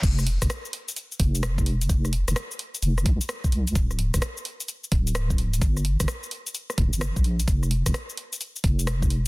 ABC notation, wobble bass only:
X:1
M:4/4
L:1/16
Q:"Swing 16ths" 1/4=129
K:Gdor
V:1 name="Wobble bass" clef=bass
F,,,3 F,,, z6 F,,,6 | F,,,3 F,,, z4 F,,,2 C,, z3 C,,2 | D,,,3 D,,, z6 D,,,6 | G,,,3 G,,, z6 D,,, G,,,2 B,,,3 |
F,,,3 F,,, z6 F,,,6 |]